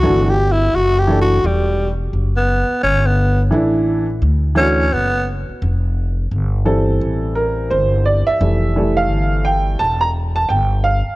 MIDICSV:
0, 0, Header, 1, 5, 480
1, 0, Start_track
1, 0, Key_signature, -1, "major"
1, 0, Tempo, 697674
1, 25, Time_signature, 4, 2, 24, 8
1, 7676, End_track
2, 0, Start_track
2, 0, Title_t, "Tenor saxophone"
2, 0, Program_c, 0, 66
2, 0, Note_on_c, 0, 66, 96
2, 201, Note_on_c, 0, 67, 93
2, 211, Note_off_c, 0, 66, 0
2, 358, Note_on_c, 0, 64, 91
2, 368, Note_off_c, 0, 67, 0
2, 520, Note_on_c, 0, 66, 95
2, 531, Note_off_c, 0, 64, 0
2, 677, Note_on_c, 0, 67, 92
2, 688, Note_off_c, 0, 66, 0
2, 831, Note_off_c, 0, 67, 0
2, 835, Note_on_c, 0, 66, 86
2, 1005, Note_on_c, 0, 55, 78
2, 1015, Note_off_c, 0, 66, 0
2, 1315, Note_off_c, 0, 55, 0
2, 1629, Note_on_c, 0, 59, 87
2, 1925, Note_off_c, 0, 59, 0
2, 1949, Note_on_c, 0, 61, 115
2, 2110, Note_on_c, 0, 59, 94
2, 2121, Note_off_c, 0, 61, 0
2, 2348, Note_off_c, 0, 59, 0
2, 3147, Note_on_c, 0, 61, 109
2, 3395, Note_on_c, 0, 59, 101
2, 3405, Note_off_c, 0, 61, 0
2, 3630, Note_off_c, 0, 59, 0
2, 7676, End_track
3, 0, Start_track
3, 0, Title_t, "Upright piano"
3, 0, Program_c, 1, 0
3, 18, Note_on_c, 1, 52, 71
3, 27, Note_on_c, 1, 57, 66
3, 32, Note_on_c, 1, 62, 63
3, 40, Note_on_c, 1, 66, 83
3, 208, Note_off_c, 1, 52, 0
3, 213, Note_off_c, 1, 57, 0
3, 215, Note_off_c, 1, 62, 0
3, 219, Note_off_c, 1, 66, 0
3, 739, Note_on_c, 1, 52, 69
3, 745, Note_on_c, 1, 57, 60
3, 752, Note_on_c, 1, 62, 64
3, 761, Note_on_c, 1, 69, 72
3, 928, Note_off_c, 1, 52, 0
3, 932, Note_off_c, 1, 57, 0
3, 935, Note_off_c, 1, 62, 0
3, 939, Note_off_c, 1, 69, 0
3, 2414, Note_on_c, 1, 52, 75
3, 2419, Note_on_c, 1, 57, 60
3, 2428, Note_on_c, 1, 62, 64
3, 2436, Note_on_c, 1, 64, 77
3, 2780, Note_off_c, 1, 52, 0
3, 2783, Note_off_c, 1, 57, 0
3, 2787, Note_off_c, 1, 62, 0
3, 2791, Note_off_c, 1, 64, 0
3, 3132, Note_on_c, 1, 52, 77
3, 3141, Note_on_c, 1, 57, 68
3, 3148, Note_on_c, 1, 62, 65
3, 3156, Note_on_c, 1, 66, 83
3, 3325, Note_off_c, 1, 52, 0
3, 3329, Note_off_c, 1, 57, 0
3, 3333, Note_off_c, 1, 62, 0
3, 3337, Note_off_c, 1, 66, 0
3, 4576, Note_on_c, 1, 52, 55
3, 4579, Note_on_c, 1, 55, 48
3, 4579, Note_on_c, 1, 69, 85
3, 4583, Note_on_c, 1, 60, 65
3, 5035, Note_off_c, 1, 69, 0
3, 5060, Note_on_c, 1, 70, 84
3, 5301, Note_on_c, 1, 72, 86
3, 5310, Note_off_c, 1, 70, 0
3, 5526, Note_off_c, 1, 72, 0
3, 5542, Note_on_c, 1, 74, 84
3, 5688, Note_on_c, 1, 76, 100
3, 5699, Note_off_c, 1, 74, 0
3, 5777, Note_off_c, 1, 52, 0
3, 5779, Note_off_c, 1, 55, 0
3, 5787, Note_on_c, 1, 52, 49
3, 5789, Note_on_c, 1, 55, 39
3, 5792, Note_on_c, 1, 57, 52
3, 6002, Note_off_c, 1, 52, 0
3, 6004, Note_off_c, 1, 55, 0
3, 6005, Note_off_c, 1, 57, 0
3, 6028, Note_on_c, 1, 52, 57
3, 6033, Note_on_c, 1, 55, 52
3, 6035, Note_on_c, 1, 57, 64
3, 6170, Note_on_c, 1, 77, 91
3, 6186, Note_off_c, 1, 76, 0
3, 6477, Note_off_c, 1, 60, 0
3, 6499, Note_on_c, 1, 79, 94
3, 6512, Note_off_c, 1, 77, 0
3, 6719, Note_off_c, 1, 52, 0
3, 6722, Note_off_c, 1, 55, 0
3, 6723, Note_off_c, 1, 57, 0
3, 6737, Note_on_c, 1, 81, 101
3, 6749, Note_off_c, 1, 79, 0
3, 6881, Note_off_c, 1, 81, 0
3, 6886, Note_on_c, 1, 82, 96
3, 6941, Note_off_c, 1, 82, 0
3, 7125, Note_on_c, 1, 81, 94
3, 7215, Note_on_c, 1, 79, 91
3, 7223, Note_off_c, 1, 81, 0
3, 7443, Note_off_c, 1, 79, 0
3, 7457, Note_on_c, 1, 77, 87
3, 7676, Note_off_c, 1, 77, 0
3, 7676, End_track
4, 0, Start_track
4, 0, Title_t, "Upright bass"
4, 0, Program_c, 2, 32
4, 25, Note_on_c, 2, 31, 109
4, 481, Note_off_c, 2, 31, 0
4, 508, Note_on_c, 2, 30, 81
4, 963, Note_off_c, 2, 30, 0
4, 989, Note_on_c, 2, 28, 99
4, 1444, Note_off_c, 2, 28, 0
4, 1468, Note_on_c, 2, 30, 90
4, 1838, Note_off_c, 2, 30, 0
4, 1950, Note_on_c, 2, 31, 104
4, 2404, Note_off_c, 2, 31, 0
4, 2424, Note_on_c, 2, 33, 95
4, 2881, Note_off_c, 2, 33, 0
4, 2903, Note_on_c, 2, 38, 95
4, 3360, Note_off_c, 2, 38, 0
4, 3386, Note_on_c, 2, 30, 90
4, 3757, Note_off_c, 2, 30, 0
4, 3866, Note_on_c, 2, 29, 107
4, 4322, Note_off_c, 2, 29, 0
4, 4343, Note_on_c, 2, 31, 95
4, 4800, Note_off_c, 2, 31, 0
4, 4825, Note_on_c, 2, 33, 94
4, 5281, Note_off_c, 2, 33, 0
4, 5306, Note_on_c, 2, 31, 96
4, 5677, Note_off_c, 2, 31, 0
4, 5784, Note_on_c, 2, 29, 109
4, 6263, Note_off_c, 2, 29, 0
4, 6263, Note_on_c, 2, 31, 90
4, 6720, Note_off_c, 2, 31, 0
4, 6749, Note_on_c, 2, 28, 89
4, 7204, Note_off_c, 2, 28, 0
4, 7225, Note_on_c, 2, 31, 96
4, 7596, Note_off_c, 2, 31, 0
4, 7676, End_track
5, 0, Start_track
5, 0, Title_t, "Muted upright bass strokes"
5, 1852, Note_on_c, 9, 29, 44
5, 1921, Note_off_c, 9, 29, 0
5, 3777, Note_on_c, 9, 29, 46
5, 3846, Note_off_c, 9, 29, 0
5, 5700, Note_on_c, 9, 29, 42
5, 5768, Note_off_c, 9, 29, 0
5, 7622, Note_on_c, 9, 29, 45
5, 7676, Note_off_c, 9, 29, 0
5, 7676, End_track
0, 0, End_of_file